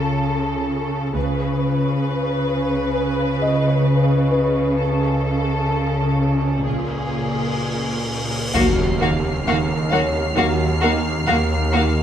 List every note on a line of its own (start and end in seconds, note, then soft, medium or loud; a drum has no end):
0.00 1.11 C#2 medium
0.00 1.11 C#3 soft
0.00 1.11 A4 soft
0.00 0.66 G#5 soft
1.15 2.01 C#2 medium
1.15 6.62 C#2 medium
1.15 6.61 C#3 soft
1.15 4.75 B4 soft
3.42 6.14 D#5 soft
4.32 7.08 B4 soft
4.78 6.61 A4 soft
4.78 cymbal swell soft
6.65 7.57 A#1 soft
6.65 8.52 C#2 medium
6.65 8.31 A#2 soft
6.65 8.32 G#4 soft
8.54 9.36 D#2 soft
8.54 12.03 D#2 medium
8.54 8.83 D#3 soft
8.54 8.90 F#3 soft
8.54 8.63 A#3 soft
8.54 8.62 F#4 soft
8.54 8.90 F#4 soft
8.54 8.63 F5 soft
8.54 12.03 F6 soft
8.54 12.03 C7 soft
8.54 taiko soft
8.54 impact soft
9.00 9.28 D#3 soft
9.00 9.09 A#3 soft
9.00 9.08 F#4 soft
9.00 9.10 F5 soft
9.46 10.26 D#2 soft
9.46 10.27 D#2 soft
9.46 9.74 D#3 soft
9.46 9.55 A#3 soft
9.46 9.55 F#4 soft
9.46 9.56 F5 soft
9.91 10.19 D#3 soft
9.91 9.99 A#3 soft
9.91 10.00 F#4 soft
9.91 12.03 C#5 soft
9.91 10.00 F5 soft
10.36 11.17 D#2 soft
10.36 10.64 D#3 soft
10.36 10.71 F#3 soft
10.36 10.45 A#3 soft
10.36 10.71 F#4 soft
10.36 10.45 F#4 soft
10.36 10.45 F5 soft
10.81 10.91 A#3 soft
10.81 11.10 D#4 soft
10.81 10.89 F#4 soft
10.81 10.92 F5 soft
11.27 12.03 D#2 soft
11.27 11.55 D#3 soft
11.27 11.37 A#3 soft
11.27 11.35 F#4 soft
11.27 11.36 F5 soft
11.72 11.82 A#3 soft
11.72 12.01 D#4 soft
11.72 11.80 F#4 soft
11.72 11.83 F5 soft